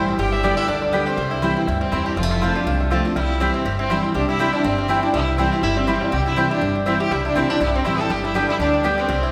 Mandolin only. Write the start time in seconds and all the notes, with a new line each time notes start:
0.43 B3 G4 D5 G5
0.93 B3 G4 D5 G5
1.42 C4 E4 C5 G5
1.92 C4 E4 C5 G5
2.41 C4 F4 C5 A5
2.90 C4 F4 C5 A5
3.40 C4 E4 C5 G5
3.90 C4 E4 C5 G5
4.39 C4 E4 C5 G5
4.89 C4 E4 C5 G5
5.38 C4 E4 C5 G5
5.87 C4 E4 C5 G5
6.37 C4 E4 C5 G5
6.86 C4 E4 C5 G5
7.35 C4 E4 C5 G5
7.84 C4 E4 C5 G5
8.35 B3 G4 D5 G5
8.84 B3 G4 D5 G5